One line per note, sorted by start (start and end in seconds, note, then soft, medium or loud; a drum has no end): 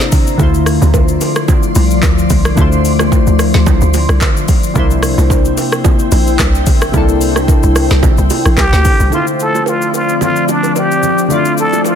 0.00 0.34 C3 medium
0.00 0.35 A#3 medium
0.00 0.36 D4 medium
0.00 0.35 E4 medium
0.00 0.36 E4 medium
0.00 0.35 C5 medium
0.00 0.37 D5 medium
0.00 0.35 A#5 medium
0.00 snare medium
0.00 shaker medium
0.12 kick medium
0.12 open hi-hat medium
0.12 low conga medium
0.12 shaker loud
0.27 shaker medium
0.38 0.79 D2 loud
0.38 2.53 D3 medium
0.38 4.72 F3 medium
0.38 2.53 A3 medium
0.38 2.54 E4 medium
0.38 2.55 F4 medium
0.38 4.72 D5 medium
0.38 4.72 C6 loud
0.38 kick loud
0.38 low conga medium
0.38 shaker medium
0.43 2.55 C5 medium
0.54 shaker medium
0.66 cross-stick loud
0.66 open hi-hat soft
0.66 shaker medium
0.82 1.18 D2 loud
0.82 low bongo medium
0.82 shaker medium
0.94 kick loud
0.94 high bongo medium
0.94 shaker medium
1.08 shaker medium
1.21 open hi-hat medium
1.21 high bongo medium
1.21 shaker medium
1.36 cross-stick loud
1.36 shaker medium
1.48 kick loud
1.48 low bongo medium
1.48 low conga medium
1.48 shaker medium
1.63 shaker medium
1.75 2.01 C2 loud
1.75 open hi-hat medium
1.75 low bongo medium
1.75 shaker loud
1.91 shaker medium
2.03 2.28 D2 medium
2.03 kick loud
2.03 clap medium
2.03 high bongo medium
2.03 shaker medium
2.18 shaker medium
2.30 2.56 C2 loud
2.30 kick medium
2.30 open hi-hat medium
2.30 low conga medium
2.30 shaker loud
2.45 cross-stick loud
2.45 shaker medium
2.56 3.24 D2 loud
2.56 4.71 D3 medium
2.56 4.72 A3 medium
2.56 4.72 E4 medium
2.56 kick loud
2.56 low conga medium
2.56 shaker medium
2.60 4.73 F4 medium
2.60 4.74 C5 medium
2.72 shaker medium
2.85 open hi-hat medium
2.85 shaker medium
2.99 cross-stick loud
2.99 low bongo medium
2.99 shaker medium
3.12 kick loud
3.12 high bongo medium
3.12 shaker medium
3.27 3.52 D2 medium
3.27 shaker medium
3.39 cross-stick loud
3.39 open hi-hat medium
3.39 high bongo medium
3.39 shaker medium
3.54 3.66 D2 medium
3.54 snare medium
3.54 shaker medium
3.66 3.81 C2 loud
3.66 kick loud
3.66 low bongo medium
3.66 low conga medium
3.66 shaker medium
3.81 4.07 D2 medium
3.81 shaker medium
3.94 open hi-hat medium
3.94 low bongo medium
3.94 shaker loud
4.09 4.20 C2 medium
4.09 cross-stick loud
4.09 shaker soft
4.21 kick loud
4.21 clap medium
4.21 high bongo medium
4.21 shaker medium
4.37 shaker medium
4.48 kick medium
4.48 open hi-hat medium
4.48 low conga medium
4.48 shaker loud
4.63 shaker medium
4.74 5.15 C2 loud
4.74 6.89 C3 medium
4.74 6.90 A#3 medium
4.74 6.90 D4 medium
4.74 9.08 E4 medium
4.74 6.91 E4 medium
4.74 9.08 C5 medium
4.74 9.08 G5 loud
4.74 kick loud
4.74 low conga medium
4.74 shaker medium
4.79 6.92 C5 medium
4.91 shaker medium
5.03 cross-stick loud
5.03 open hi-hat medium
5.03 shaker medium
5.18 5.55 C2 loud
5.18 low bongo medium
5.18 shaker medium
5.30 kick loud
5.30 high bongo medium
5.30 shaker medium
5.45 shaker medium
5.58 open hi-hat medium
5.58 high bongo medium
5.58 shaker medium
5.72 cross-stick loud
5.72 shaker medium
5.84 kick loud
5.84 low bongo medium
5.84 low conga medium
5.84 shaker medium
5.99 shaker medium
6.12 6.37 A#1 loud
6.12 open hi-hat medium
6.12 low bongo medium
6.12 shaker loud
6.27 shaker medium
6.39 6.68 C2 loud
6.39 kick loud
6.39 clap medium
6.39 high bongo medium
6.39 shaker medium
6.55 shaker medium
6.66 6.92 A#1 loud
6.66 kick medium
6.66 open hi-hat medium
6.66 low conga medium
6.66 shaker medium
6.82 cross-stick loud
6.82 shaker medium
6.92 7.60 C2 loud
6.92 9.07 C3 medium
6.92 9.08 A#3 medium
6.92 9.08 D4 medium
6.92 kick loud
6.92 low conga medium
6.92 shaker medium
6.96 9.09 E4 medium
6.96 9.10 A4 medium
7.09 shaker medium
7.21 open hi-hat medium
7.21 shaker medium
7.36 cross-stick medium
7.36 low bongo medium
7.36 shaker medium
7.48 kick loud
7.48 high bongo medium
7.48 shaker medium
7.63 7.89 C2 medium
7.63 shaker medium
7.76 cross-stick medium
7.76 open hi-hat medium
7.76 high bongo medium
7.76 shaker medium
7.91 8.02 C2 medium
7.91 snare medium
7.91 shaker medium
8.03 8.17 A#1 loud
8.03 kick loud
8.03 low bongo medium
8.03 low conga medium
8.03 shaker medium
8.18 8.30 C2 loud
8.18 shaker medium
8.30 open hi-hat medium
8.30 low bongo medium
8.30 shaker medium
8.46 8.57 A#1 medium
8.46 cross-stick loud
8.46 shaker medium
8.58 8.72 C2 medium
8.58 9.09 G4 loud
8.58 kick loud
8.58 clap medium
8.58 high bongo medium
8.58 shaker medium
8.73 8.84 D2 loud
8.73 snare medium
8.73 shaker medium
8.85 kick medium
8.85 open hi-hat medium
8.85 low conga medium
8.85 shaker loud
9.00 9.11 C2 medium
9.00 shaker medium
9.10 11.25 D3 medium
9.10 11.95 F3 medium
9.10 11.26 A3 medium
9.10 11.95 C4 medium
9.10 11.27 E4 medium
9.10 11.95 D5 medium
9.10 low conga medium
9.10 shaker medium
9.14 9.26 F4 medium
9.14 11.27 F4 medium
9.14 11.28 C5 medium
9.27 shaker soft
9.40 9.70 A4 medium
9.40 shaker medium
9.55 low bongo medium
9.55 shaker medium
9.66 9.95 F4 medium
9.66 high bongo medium
9.66 shaker medium
9.82 shaker medium
9.94 10.20 F4 medium
9.94 high bongo medium
9.94 shaker medium
10.09 shaker soft
10.21 10.52 F4 medium
10.21 low bongo medium
10.21 low conga medium
10.21 shaker medium
10.36 shaker soft
10.49 10.79 D4 medium
10.49 low bongo medium
10.49 shaker medium
10.63 high bongo medium
10.63 shaker soft
10.76 11.34 G4 medium
10.76 high bongo medium
10.76 shaker medium
10.92 shaker soft
11.03 low conga medium
11.03 shaker medium
11.18 shaker medium
11.28 11.95 D3 medium
11.28 11.95 A3 medium
11.28 11.95 E4 medium
11.28 11.95 F4 medium
11.28 low conga medium
11.28 shaker medium
11.32 11.59 F4 medium
11.32 11.95 D5 medium
11.45 shaker soft
11.58 11.88 A4 medium
11.58 shaker medium
11.73 low bongo medium
11.73 shaker medium
11.84 11.95 F4 medium
11.84 high bongo medium
11.84 shaker medium